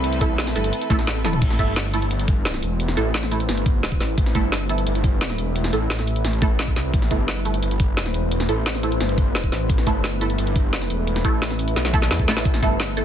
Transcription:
Already playing: C2 A3 C4 E4 A4 B4 E5
0.04 closed hi-hat
0.13 closed hi-hat
0.21 A3 E4 A4, kick, closed hi-hat
0.29 B1
0.38 snare, closed hi-hat
0.47 snare
0.56 G1 A3 E4 A4, closed hi-hat
0.64 closed hi-hat
0.73 closed hi-hat
0.81 closed hi-hat
0.90 A1 A3 E4 A4, kick, closed hi-hat
0.99 snare
1.07 snare, closed hi-hat
1.25 A3 E4 A4, snare, closed hi-hat, high tom
1.33 closed hi-hat, mid tom
1.42 A1 A3 E4 B4 C5, kick, closed hi-hat, crash
1.50 snare
1.59 G1 A3 E4 A4, kick, closed hi-hat
1.76 snare, closed hi-hat
1.94 A3 E4 A4, closed hi-hat
2.02 closed hi-hat
2.11 G1, closed hi-hat
2.19 closed hi-hat
2.28 kick, closed hi-hat
2.45 snare, closed hi-hat
2.54 snare
2.63 E1, closed hi-hat
2.80 closed hi-hat
2.88 snare
2.97 A1 A3 E4 A4, closed hi-hat
3.14 snare, closed hi-hat
3.23 snare
3.31 A3 E4 A4, closed hi-hat
3.40 closed hi-hat
3.49 G1, snare, closed hi-hat
3.57 closed hi-hat
3.66 kick, closed hi-hat
3.83 snare, closed hi-hat
3.92 kick
4.00 A1, snare, closed hi-hat
4.18 A1 E5, kick, closed hi-hat
4.26 snare
4.35 G1 A3 E4 A4, kick, closed hi-hat
4.52 snare, closed hi-hat
4.69 A3 E4 A4, closed hi-hat
4.78 closed hi-hat
4.87 G1, closed hi-hat
4.95 closed hi-hat
5.04 kick, closed hi-hat
5.21 snare, closed hi-hat
5.30 snare
5.38 E1, closed hi-hat
5.56 closed hi-hat
5.64 snare
5.73 A1 A3 E4 A4, closed hi-hat
5.90 snare, closed hi-hat
5.99 snare
6.07 closed hi-hat
6.16 closed hi-hat
6.25 A1, snare, closed hi-hat
6.33 closed hi-hat
6.42 A3 E4 A4, kick, closed hi-hat
6.59 snare, closed hi-hat
6.68 kick
6.76 C2, snare, closed hi-hat
6.94 A1 C5, kick, closed hi-hat
7.02 snare
7.11 G1 A3 E4 A4, kick, closed hi-hat
7.28 snare, closed hi-hat
7.45 A3 E4 A4, closed hi-hat
7.54 closed hi-hat
7.63 G1, closed hi-hat
7.71 closed hi-hat
7.80 kick, closed hi-hat
7.97 snare, closed hi-hat
8.06 snare
8.14 E1, closed hi-hat
8.32 closed hi-hat
8.40 snare
8.49 A1 A3 E4 A4, closed hi-hat
8.66 snare, closed hi-hat
8.75 snare
8.83 A3 E4 A4, closed hi-hat
8.92 closed hi-hat
9.00 G1, snare, closed hi-hat
9.09 closed hi-hat
9.18 kick, closed hi-hat
9.35 snare, closed hi-hat
9.44 kick
9.52 A1, snare, closed hi-hat
9.69 A1 E5, kick, closed hi-hat
9.78 snare
9.87 G1 A3 E4 A4, kick, closed hi-hat
10.04 snare, closed hi-hat
10.21 A3 E4 A4, closed hi-hat
10.30 closed hi-hat
10.38 G1, closed hi-hat
10.47 closed hi-hat
10.56 kick, closed hi-hat
10.73 snare, closed hi-hat
10.82 snare
10.90 E1, closed hi-hat
11.07 closed hi-hat
11.16 snare, closed hi-hat
11.25 A1 A3 E4 A4, kick, closed hi-hat
11.42 snare, closed hi-hat
11.50 snare
11.59 closed hi-hat
11.68 closed hi-hat
11.76 B1, snare, closed hi-hat
11.85 snare, closed hi-hat
11.94 A3 E4 A4, kick, closed hi-hat
12.02 snare
12.11 E2, snare, closed hi-hat
12.19 kick
12.28 A1 A3 E4 A4, snare, closed hi-hat
12.37 snare, closed hi-hat
12.45 A1 C5, kick, closed hi-hat
12.54 snare
12.63 G1 A3 E4 A4, kick, closed hi-hat
12.80 snare, closed hi-hat
12.97 A3 E4 A4, closed hi-hat

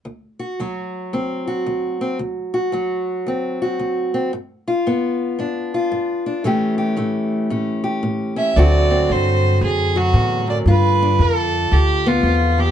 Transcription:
0.05 D2
0.39 F#4
0.60 D2 F#3
1.13 D2 C4
1.47 F#4
1.66 D2
2.01 C4
2.19 D2
2.54 F#4
2.72 D2 F#3
3.27 D2 C4
3.62 F#4
3.79 D2
4.14 C4
4.33 G2
4.68 F4
4.86 G2 B3
5.39 G2 D4
5.74 F4
5.92 G2
6.26 D4
6.44 A2 E3 A3 C#4 G4
6.78 G4
6.97 A2 A3
7.50 A2 C#4
7.84 G4
8.03 A2
8.36 C#4 E5
8.56 D2 D3 F#3 C4 F#4 D5
8.90 C4
9.09 D2 G2 C5
9.61 D2 F#2 G#4
9.96 F#3 F#4
10.13 E2 A2
10.47 F#2 D5
10.66 G2 F4 B4
11.02 D4
11.19 F2 G2 A4
11.71 D2 G2 G4
12.06 B3 F4
12.23 E2 F2
12.58 E2 G4

